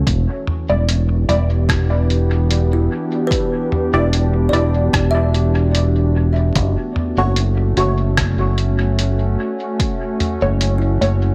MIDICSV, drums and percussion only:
0, 0, Header, 1, 2, 480
1, 0, Start_track
1, 0, Tempo, 810811
1, 41, Time_signature, 4, 2, 24, 8
1, 6717, End_track
2, 0, Start_track
2, 0, Title_t, "Drums"
2, 40, Note_on_c, 9, 36, 100
2, 42, Note_on_c, 9, 42, 51
2, 99, Note_off_c, 9, 36, 0
2, 101, Note_off_c, 9, 42, 0
2, 281, Note_on_c, 9, 45, 76
2, 340, Note_off_c, 9, 45, 0
2, 525, Note_on_c, 9, 42, 50
2, 584, Note_off_c, 9, 42, 0
2, 764, Note_on_c, 9, 42, 29
2, 823, Note_off_c, 9, 42, 0
2, 999, Note_on_c, 9, 36, 102
2, 1004, Note_on_c, 9, 37, 89
2, 1004, Note_on_c, 9, 42, 53
2, 1059, Note_off_c, 9, 36, 0
2, 1063, Note_off_c, 9, 37, 0
2, 1063, Note_off_c, 9, 42, 0
2, 1244, Note_on_c, 9, 42, 29
2, 1303, Note_off_c, 9, 42, 0
2, 1483, Note_on_c, 9, 42, 51
2, 1543, Note_off_c, 9, 42, 0
2, 1959, Note_on_c, 9, 36, 104
2, 1965, Note_on_c, 9, 42, 52
2, 2018, Note_off_c, 9, 36, 0
2, 2024, Note_off_c, 9, 42, 0
2, 2203, Note_on_c, 9, 45, 76
2, 2262, Note_off_c, 9, 45, 0
2, 2445, Note_on_c, 9, 42, 51
2, 2505, Note_off_c, 9, 42, 0
2, 2684, Note_on_c, 9, 42, 29
2, 2743, Note_off_c, 9, 42, 0
2, 2921, Note_on_c, 9, 36, 104
2, 2923, Note_on_c, 9, 37, 91
2, 2923, Note_on_c, 9, 42, 53
2, 2980, Note_off_c, 9, 36, 0
2, 2983, Note_off_c, 9, 37, 0
2, 2983, Note_off_c, 9, 42, 0
2, 3164, Note_on_c, 9, 42, 28
2, 3223, Note_off_c, 9, 42, 0
2, 3402, Note_on_c, 9, 42, 54
2, 3461, Note_off_c, 9, 42, 0
2, 3880, Note_on_c, 9, 42, 53
2, 3881, Note_on_c, 9, 36, 104
2, 3940, Note_off_c, 9, 36, 0
2, 3940, Note_off_c, 9, 42, 0
2, 4120, Note_on_c, 9, 45, 70
2, 4179, Note_off_c, 9, 45, 0
2, 4359, Note_on_c, 9, 42, 51
2, 4418, Note_off_c, 9, 42, 0
2, 4599, Note_on_c, 9, 42, 28
2, 4658, Note_off_c, 9, 42, 0
2, 4839, Note_on_c, 9, 37, 92
2, 4839, Note_on_c, 9, 42, 53
2, 4841, Note_on_c, 9, 36, 105
2, 4898, Note_off_c, 9, 37, 0
2, 4898, Note_off_c, 9, 42, 0
2, 4900, Note_off_c, 9, 36, 0
2, 5078, Note_on_c, 9, 42, 28
2, 5138, Note_off_c, 9, 42, 0
2, 5320, Note_on_c, 9, 42, 51
2, 5379, Note_off_c, 9, 42, 0
2, 5799, Note_on_c, 9, 36, 102
2, 5800, Note_on_c, 9, 42, 49
2, 5859, Note_off_c, 9, 36, 0
2, 5860, Note_off_c, 9, 42, 0
2, 6040, Note_on_c, 9, 42, 28
2, 6040, Note_on_c, 9, 45, 71
2, 6099, Note_off_c, 9, 42, 0
2, 6099, Note_off_c, 9, 45, 0
2, 6280, Note_on_c, 9, 42, 49
2, 6339, Note_off_c, 9, 42, 0
2, 6522, Note_on_c, 9, 42, 27
2, 6581, Note_off_c, 9, 42, 0
2, 6717, End_track
0, 0, End_of_file